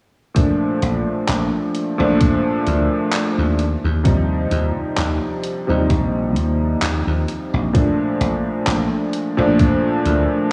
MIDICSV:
0, 0, Header, 1, 5, 480
1, 0, Start_track
1, 0, Key_signature, -2, "major"
1, 0, Tempo, 923077
1, 190, Time_signature, 4, 2, 24, 8
1, 5472, End_track
2, 0, Start_track
2, 0, Title_t, "Electric grand piano"
2, 0, Program_c, 0, 2
2, 179, Note_on_c, 0, 46, 73
2, 185, Note_on_c, 0, 53, 68
2, 189, Note_on_c, 0, 57, 68
2, 195, Note_on_c, 0, 62, 80
2, 301, Control_c, 0, 64, 127
2, 1003, Note_off_c, 0, 46, 0
2, 1006, Note_off_c, 0, 53, 0
2, 1008, Note_off_c, 0, 57, 0
2, 1011, Note_off_c, 0, 62, 0
2, 1029, Note_on_c, 0, 46, 96
2, 1035, Note_on_c, 0, 53, 87
2, 1040, Note_on_c, 0, 57, 89
2, 1045, Note_on_c, 0, 62, 102
2, 1851, Note_off_c, 0, 46, 0
2, 1854, Note_off_c, 0, 53, 0
2, 1857, Note_off_c, 0, 57, 0
2, 1859, Note_off_c, 0, 62, 0
2, 1878, Control_c, 0, 64, 0
2, 1976, Control_c, 0, 64, 127
2, 2099, Note_on_c, 0, 48, 75
2, 2105, Note_on_c, 0, 53, 70
2, 2111, Note_on_c, 0, 55, 69
2, 2116, Note_on_c, 0, 63, 87
2, 2923, Note_off_c, 0, 48, 0
2, 2926, Note_off_c, 0, 53, 0
2, 2929, Note_off_c, 0, 55, 0
2, 2932, Note_off_c, 0, 63, 0
2, 2948, Note_on_c, 0, 48, 73
2, 2954, Note_on_c, 0, 53, 64
2, 2959, Note_on_c, 0, 55, 67
2, 2964, Note_on_c, 0, 63, 79
2, 3997, Note_off_c, 0, 48, 0
2, 4000, Note_off_c, 0, 53, 0
2, 4003, Note_off_c, 0, 55, 0
2, 4006, Note_off_c, 0, 63, 0
2, 4021, Note_on_c, 0, 46, 73
2, 4026, Note_on_c, 0, 53, 68
2, 4032, Note_on_c, 0, 57, 68
2, 4036, Control_c, 0, 64, 0
2, 4036, Note_on_c, 0, 62, 81
2, 4131, Control_c, 0, 64, 127
2, 4844, Note_off_c, 0, 46, 0
2, 4847, Note_off_c, 0, 53, 0
2, 4850, Note_off_c, 0, 57, 0
2, 4852, Note_off_c, 0, 62, 0
2, 4873, Note_on_c, 0, 46, 97
2, 4878, Note_on_c, 0, 53, 87
2, 4884, Note_on_c, 0, 57, 86
2, 4888, Note_on_c, 0, 62, 109
2, 5472, Note_off_c, 0, 46, 0
2, 5472, Note_off_c, 0, 53, 0
2, 5472, Note_off_c, 0, 57, 0
2, 5472, Note_off_c, 0, 62, 0
2, 5472, End_track
3, 0, Start_track
3, 0, Title_t, "Slap bass"
3, 0, Program_c, 1, 36
3, 428, Note_on_c, 1, 34, 93
3, 532, Note_off_c, 1, 34, 0
3, 669, Note_on_c, 1, 34, 93
3, 773, Note_off_c, 1, 34, 0
3, 1039, Note_on_c, 1, 34, 92
3, 1126, Note_off_c, 1, 34, 0
3, 1389, Note_on_c, 1, 38, 97
3, 1493, Note_off_c, 1, 38, 0
3, 1759, Note_on_c, 1, 39, 78
3, 1946, Note_off_c, 1, 39, 0
3, 1999, Note_on_c, 1, 39, 84
3, 2313, Note_off_c, 1, 39, 0
3, 2347, Note_on_c, 1, 39, 94
3, 2452, Note_off_c, 1, 39, 0
3, 2589, Note_on_c, 1, 39, 98
3, 2693, Note_off_c, 1, 39, 0
3, 2960, Note_on_c, 1, 39, 91
3, 3047, Note_off_c, 1, 39, 0
3, 3068, Note_on_c, 1, 34, 77
3, 3309, Note_off_c, 1, 34, 0
3, 3309, Note_on_c, 1, 39, 81
3, 3504, Note_off_c, 1, 39, 0
3, 3547, Note_on_c, 1, 39, 82
3, 3651, Note_off_c, 1, 39, 0
3, 3677, Note_on_c, 1, 39, 79
3, 3766, Note_off_c, 1, 39, 0
3, 3919, Note_on_c, 1, 34, 76
3, 4006, Note_off_c, 1, 34, 0
3, 4268, Note_on_c, 1, 34, 92
3, 4372, Note_off_c, 1, 34, 0
3, 4509, Note_on_c, 1, 34, 96
3, 4613, Note_off_c, 1, 34, 0
3, 4880, Note_on_c, 1, 34, 91
3, 4967, Note_off_c, 1, 34, 0
3, 5230, Note_on_c, 1, 38, 99
3, 5333, Note_off_c, 1, 38, 0
3, 5472, End_track
4, 0, Start_track
4, 0, Title_t, "Muted slap bass strokes"
4, 2479, Note_on_c, 9, 29, 42
4, 2531, Note_off_c, 9, 29, 0
4, 5472, End_track
5, 0, Start_track
5, 0, Title_t, "Drums"
5, 187, Note_on_c, 9, 42, 82
5, 188, Note_on_c, 9, 36, 110
5, 239, Note_off_c, 9, 42, 0
5, 240, Note_off_c, 9, 36, 0
5, 428, Note_on_c, 9, 42, 65
5, 480, Note_off_c, 9, 42, 0
5, 668, Note_on_c, 9, 39, 108
5, 668, Note_on_c, 9, 42, 75
5, 720, Note_off_c, 9, 39, 0
5, 720, Note_off_c, 9, 42, 0
5, 908, Note_on_c, 9, 42, 64
5, 960, Note_off_c, 9, 42, 0
5, 1147, Note_on_c, 9, 42, 80
5, 1150, Note_on_c, 9, 36, 117
5, 1199, Note_off_c, 9, 42, 0
5, 1202, Note_off_c, 9, 36, 0
5, 1386, Note_on_c, 9, 42, 63
5, 1438, Note_off_c, 9, 42, 0
5, 1625, Note_on_c, 9, 39, 117
5, 1625, Note_on_c, 9, 42, 81
5, 1677, Note_off_c, 9, 39, 0
5, 1677, Note_off_c, 9, 42, 0
5, 1866, Note_on_c, 9, 42, 67
5, 1918, Note_off_c, 9, 42, 0
5, 2106, Note_on_c, 9, 42, 78
5, 2109, Note_on_c, 9, 36, 119
5, 2158, Note_off_c, 9, 42, 0
5, 2161, Note_off_c, 9, 36, 0
5, 2347, Note_on_c, 9, 42, 66
5, 2399, Note_off_c, 9, 42, 0
5, 2587, Note_on_c, 9, 39, 115
5, 2587, Note_on_c, 9, 42, 78
5, 2639, Note_off_c, 9, 39, 0
5, 2639, Note_off_c, 9, 42, 0
5, 2826, Note_on_c, 9, 42, 65
5, 2878, Note_off_c, 9, 42, 0
5, 3068, Note_on_c, 9, 42, 80
5, 3069, Note_on_c, 9, 36, 118
5, 3120, Note_off_c, 9, 42, 0
5, 3121, Note_off_c, 9, 36, 0
5, 3308, Note_on_c, 9, 42, 68
5, 3360, Note_off_c, 9, 42, 0
5, 3547, Note_on_c, 9, 39, 120
5, 3547, Note_on_c, 9, 42, 81
5, 3599, Note_off_c, 9, 39, 0
5, 3599, Note_off_c, 9, 42, 0
5, 3787, Note_on_c, 9, 42, 66
5, 3839, Note_off_c, 9, 42, 0
5, 4029, Note_on_c, 9, 36, 120
5, 4029, Note_on_c, 9, 42, 76
5, 4081, Note_off_c, 9, 36, 0
5, 4081, Note_off_c, 9, 42, 0
5, 4269, Note_on_c, 9, 42, 66
5, 4321, Note_off_c, 9, 42, 0
5, 4508, Note_on_c, 9, 39, 115
5, 4508, Note_on_c, 9, 42, 76
5, 4560, Note_off_c, 9, 39, 0
5, 4560, Note_off_c, 9, 42, 0
5, 4749, Note_on_c, 9, 42, 64
5, 4801, Note_off_c, 9, 42, 0
5, 4989, Note_on_c, 9, 42, 80
5, 4990, Note_on_c, 9, 36, 120
5, 5041, Note_off_c, 9, 42, 0
5, 5042, Note_off_c, 9, 36, 0
5, 5229, Note_on_c, 9, 42, 64
5, 5281, Note_off_c, 9, 42, 0
5, 5472, End_track
0, 0, End_of_file